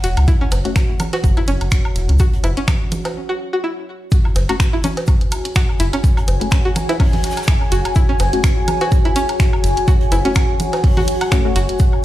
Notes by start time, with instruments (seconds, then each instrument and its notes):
Already playing: ambient pad F#4 C#5 F#5
0.03 analog synth bass E1, synth pluck F#4, snare, closed hi-hat, shaker
0.17 analog synth bass C#2, closed hi-hat, high woodblock
0.28 synth pluck E4, kick, closed hi-hat, shaker
0.41 synth pluck C#4
0.52 analog synth bass F#1, snare, closed hi-hat, high woodblock, low woodblock, shaker
0.65 synth stab A3 C#4 F#4, closed hi-hat
0.76 finger snap, kick, snare, closed hi-hat, high woodblock, shaker
1.00 closed hi-hat, low conga, high woodblock, shaker
1.13 synth pluck F#4, snare, closed hi-hat, low woodblock
1.24 analog synth bass F#1, kick, closed hi-hat, shaker
1.37 synth pluck E4, closed hi-hat, high woodblock
1.48 analog synth bass F#1, synth pluck C#4, closed hi-hat, shaker
1.61 analog synth bass F#1, closed hi-hat, high woodblock
1.72 finger snap, kick, snare, closed hi-hat, shaker
1.85 high woodblock
1.96 analog synth bass E1, snare, closed hi-hat, shaker
2.09 analog synth bass C#2, closed hi-hat
2.19 synth pluck F#4, kick, closed hi-hat, high woodblock, shaker
2.33 closed hi-hat
2.44 analog synth bass F#1, synth pluck E4, closed hi-hat, high woodblock, low woodblock, shaker
2.57 synth pluck C#4, closed hi-hat
2.68 finger snap, kick, snare, closed hi-hat, low conga, high woodblock, shaker
2.92 closed hi-hat, low conga, shaker
3.05 snare, closed hi-hat, high woodblock, low woodblock
3.29 synth pluck F#4
3.53 synth pluck F#4
3.64 synth pluck E4
4.12 ambient pad F#4, kick, closed hi-hat, shaker
4.25 ambient pad C#5, high woodblock
4.36 analog synth bass F#1, snare, closed hi-hat, low woodblock, shaker
4.49 synth stab A3 C#4 F#4, synth pluck F#4, closed hi-hat, high woodblock
4.55 ambient pad G#5
4.60 finger snap, kick, snare, closed hi-hat, shaker
4.73 synth pluck E4
4.84 synth pluck C#4, closed hi-hat, low conga, high woodblock, shaker
4.97 snare, closed hi-hat, low woodblock
5.07 kick, closed hi-hat, high woodblock, shaker
5.21 closed hi-hat
5.32 closed hi-hat, high woodblock, shaker
5.45 closed hi-hat
5.55 synth pluck F#4, finger snap, kick, snare, closed hi-hat, shaker
5.69 high woodblock
5.79 analog synth bass F#1, synth pluck E4, snare, closed hi-hat, shaker
5.93 synth pluck C#4, closed hi-hat, high woodblock
6.04 kick, closed hi-hat, shaker
6.17 closed hi-hat, high woodblock
6.28 analog synth bass F#1, closed hi-hat, low woodblock, shaker
6.41 synth stab A3 C#4 F#4, closed hi-hat
6.51 finger snap, kick, snare, closed hi-hat, high woodblock, shaker
6.65 synth pluck F#4
6.76 closed hi-hat, low conga, high woodblock, shaker
6.89 synth pluck E4, snare, closed hi-hat, low woodblock
7.00 synth pluck C#4, kick, closed hi-hat, open hi-hat, high woodblock
7.13 snare, closed hi-hat, low conga
7.23 snare, closed hi-hat, shaker
7.31 snare, shaker
7.36 snare, closed hi-hat, high woodblock, shaker
7.42 snare, shaker
7.47 finger snap, kick, snare, closed hi-hat, shaker
7.61 high woodblock
7.72 analog synth bass F#1, synth pluck F#4, snare, closed hi-hat, shaker
7.85 closed hi-hat, high woodblock
7.95 synth pluck E4, kick, closed hi-hat, shaker
8.09 synth pluck C#4
8.20 analog synth bass F#1, snare, closed hi-hat, high woodblock, low woodblock, shaker
8.33 synth stab A3 C#4 F#4, closed hi-hat
8.44 finger snap, kick, snare, closed hi-hat, high woodblock, shaker
8.68 closed hi-hat, low conga, high woodblock, shaker
8.81 synth pluck F#4, snare, closed hi-hat, low woodblock
8.92 kick, closed hi-hat, shaker
9.05 synth pluck E4, closed hi-hat, high woodblock
9.16 synth pluck C#4, closed hi-hat, shaker
9.29 closed hi-hat, high woodblock
9.40 finger snap, kick, snare, closed hi-hat, shaker
9.53 high woodblock
9.64 analog synth bass F#1, snare, closed hi-hat, shaker
9.77 closed hi-hat
9.88 synth pluck F#4, kick, closed hi-hat, high woodblock, shaker
10.01 closed hi-hat
10.12 analog synth bass F#1, synth pluck E4, closed hi-hat, high woodblock, low woodblock, shaker
10.25 synth stab A3 C#4 F#4, synth pluck C#4, closed hi-hat
10.35 finger snap, kick, snare, closed hi-hat, high woodblock, shaker
10.60 closed hi-hat, low conga, shaker
10.73 snare, closed hi-hat, high woodblock, low woodblock
10.84 kick, closed hi-hat, open hi-hat
10.97 synth pluck F#4, snare, closed hi-hat, low conga, high woodblock
11.07 closed hi-hat, shaker
11.21 synth pluck F#5, closed hi-hat, high woodblock
11.31 synth stab A3 C#4 F#4, synth pluck F#5, finger snap, kick, snare, closed hi-hat, shaker
11.45 synth stab A3 C#4 F#4
11.56 analog synth bass F#1, synth pluck F#4, snare, closed hi-hat, high woodblock, shaker
11.69 closed hi-hat
11.79 kick, closed hi-hat, shaker
11.93 high woodblock